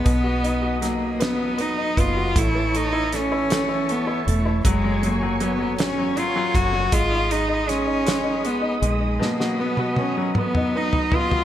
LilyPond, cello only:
\new Staff \with { instrumentName = "Cello" } { \time 6/8 \key b \lydian \tempo 4. = 52 b4 ais8 b8 dis'8 eis'8 | e'8 dis'8 cis'4 b8 a8 | gis8 ais8 b8 cis'8 eis'8 fis'8 | eis'8 dis'8 cis'4 b8 gis8 |
ais8 b8 cis'8 b8 dis'8 eis'8 | }